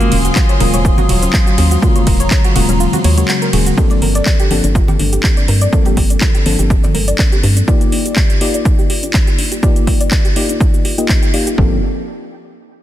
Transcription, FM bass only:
0.12 D#1
0.60 D#1
0.74 D#1
1.09 D#1
1.58 D#2
2.07 D#1
2.56 D#1
2.69 D#1
3.04 D#2
3.53 D#1
4.02 G1
4.51 G1
4.64 G1
5.00 G1
5.48 G2
5.97 G1
6.46 G1
6.59 G1
6.95 G1
7.43 G2
11.58 G1

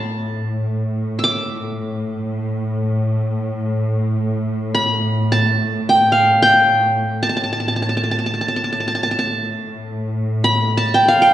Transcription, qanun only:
Already playing: A5 B5
1.19 E6
1.24 D6
4.75 B5
5.32 A5
5.89 G5
6.12 F5
6.42 G5
7.23 A5
7.29 A5
7.37 A5
7.44 A5
7.53 A5
7.60 A5
7.68 A5
7.76 A5
7.82 A5
7.89 A5
7.97 A5
8.04 A5
8.11 A5
8.19 A5
8.26 A5
8.34 A5
8.41 A5
8.48 A5
8.56 A5
8.64 A5
8.72 A5
8.80 A5
8.88 A5
8.95 A5
9.03 A5
9.11 A5
9.19 A5
10.44 B5
10.77 A5
10.94 G5
11.08 F5
11.22 G5

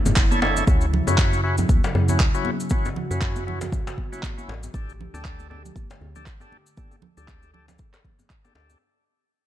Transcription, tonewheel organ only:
0.31 D4 E4 A4 C#5
0.42 D4 E4 A4 C#5
0.67 F#4
1.07 C#4 E4 F#4
1.44 C#4 E4 F#4
2.09 C#4 E4 F#4
2.34 C#4 E4 F#4
2.71 C#4 E4 F#4
3.11 C#4 E4 F#4
3.47 C#4 E4 F#4
4.12 C#4 E4 F#4
4.38 C#4 E4 F#4
4.74 D4 G4 A4
5.14 D4 G4 A4
5.50 D4 G4 A4
6.16 D4 G4 A4
6.41 D4 G4 A4
6.77 D4 G4 A4
7.17 D4 G4 A4
7.54 D4 G4 A4
8.44 D4 G4 A4
8.55 D4 G4 A4

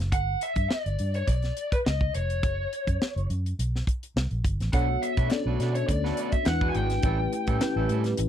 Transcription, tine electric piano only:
4.72 B3 D4 F#4 A4 C#5
5.30 B3 C#4 F#4 A4 D5
5.37 D4
6.46 G#3 D4 E4 F#4 B4
7.04 A3 C#4 E4 G4 B4
7.61 A3 C#4 E4 G4 B4

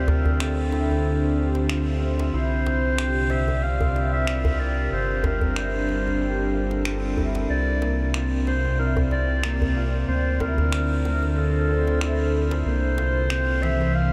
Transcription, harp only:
Already playing: C4 E4 G4
0.08 F4
0.40 C4
0.72 E4
1.37 G4
1.69 F4
2.02 C4
2.34 E4
2.98 G4
3.31 F4
3.63 C4
3.95 E4
4.60 G4
4.92 F4
5.24 C4
5.57 E4
6.21 G4
6.53 F4
6.86 C4
7.17 E4
7.82 A#3
8.14 F4
8.47 C4
8.79 E4
9.43 A#3
9.76 F4
10.08 C4
10.40 E4
11.05 A3
11.37 F4
11.69 C4
12.01 E4
12.66 A#3
12.98 F4
13.30 C4
13.62 E3

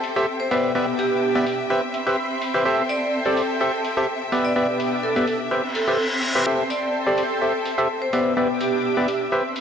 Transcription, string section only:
Already playing: C4 A4 E5 G5
0.51 B2
0.67 D4
1.70 C4
2.78 A4
4.32 B2
4.47 D4
5.51 C4
6.58 A4
8.13 B2
8.33 D4
9.32 C4

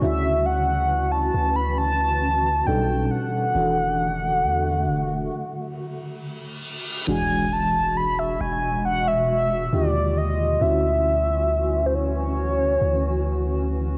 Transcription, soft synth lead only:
0.02 E5
0.46 F#5
1.12 A5
1.56 B5
1.78 A5
2.66 G5
3.11 F#5
7.09 G#5
7.53 A5
7.97 B5
8.19 E5
8.41 G#5
8.85 F#5
9.08 E5
9.30 E5
9.74 D5
10.18 D#5
10.62 E5
11.86 C5
11.94 C#5

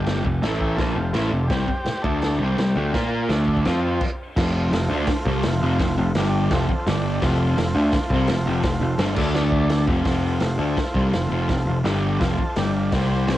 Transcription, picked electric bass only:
Already playing: G1
0.24 F1
0.42 A1
0.78 A#1
0.96 F1
1.13 A1
1.31 F1
1.50 C2
1.85 muted picked electric bass stroke
2.04 D2
2.39 C2
2.58 C2
2.76 D2
2.94 A#2
3.29 D2
3.66 F2
4.36 F1
4.71 F1
4.89 D2
5.07 muted picked electric bass stroke
5.25 C2
5.44 F1
5.62 F1
5.80 F1
5.98 F1
6.15 G1
6.51 F1
6.68 muted picked electric bass stroke
6.86 G1
7.22 F1
7.58 F1
7.75 D2
7.93 muted picked electric bass stroke
8.10 C2
8.28 F1
8.46 F1
8.64 F1
8.81 F1
8.98 G1
9.17 D2
9.87 F1
10.04 F1
10.41 F1
10.58 D2
10.76 muted picked electric bass stroke
10.94 C2
11.12 F1
11.29 F1
11.49 F1
11.66 F1
11.84 G1
12.20 F1
12.57 G1
12.92 C2
13.27 C2

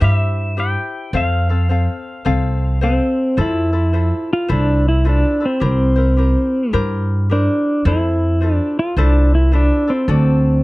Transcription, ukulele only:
0.00 E4 G4 C5 E5
0.57 E4 G4 C5 E5
1.14 C4 A4 C5 F5
1.49 C4 A4 F5
1.69 C4 A4 C5 F5
2.25 C4 A4 C5 F5
2.81 C4 A4 C5 F5
3.37 E4 F4 A4 C5
3.73 E4 F4 A4
3.93 E4 F4 A4 C5
4.48 E4 F4 A4 C5
5.05 E4 F4 A4 C5
5.40 E4 F4 A4
5.60 E4 G4 A#4 C5
5.96 E4 A#4 C5
6.17 E4 G4 A#4 C5
6.73 E4 G4 A#4 C5
7.30 E4 G4 A#4 C5
7.86 E4 A4 C5
8.41 E4 F4 A4 C5
8.97 E4 F4 A4 C5
9.52 E4 F4 A4 C5
9.87 E4 F4 A4
10.08 D4 F#4 A4 D5

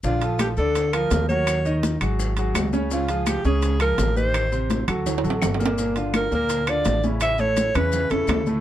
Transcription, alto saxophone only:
0.05 F4
0.41 G4
0.57 A4
0.93 A#4
1.29 C#5
2.93 F4
3.28 G4
3.46 G#4
3.82 A#4
4.17 C5
6.17 A#4
6.35 A#4
6.69 D5
7.22 E5
7.40 C#5
7.76 B4
8.11 A4

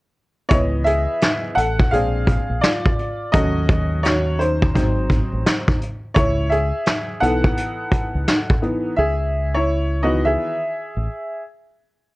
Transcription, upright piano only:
0.49 E3 B3 E4 C#5 D#5
0.84 G#4 E5
1.55 A4 F#5
1.91 G#3 C4 D4 G#4 F5
2.61 F4 D5
3.32 F#3 A3 C#4 F#4 D#5
4.03 F#4 C#5
4.39 D#4 C5
4.74 F#3 C4 D#4
6.14 E4 C#5
6.50 G#4 E5
7.20 E3 B3 D#4 A4 F#5
8.62 E3 B3 D#4
8.97 G#4 E5
9.54 E4 C#5
10.03 D#3 E3 B3 F#4 D#5
10.25 G#4 E5

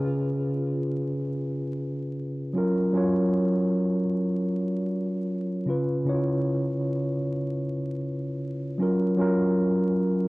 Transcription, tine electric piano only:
Already playing: C#3 C#4 F4 G#4 B4
2.54 F#3 C#4 F4
2.58 A#4
2.93 F#3 C#4 F4
2.97 C#5
5.66 C#3 C#4 F4
5.70 B4
6.05 C#3 C#4 E4
6.10 C#5
6.15 F4
8.78 F#3 C#4 F4
8.82 A#4
9.17 F#3 C#4 F4
9.21 A#4

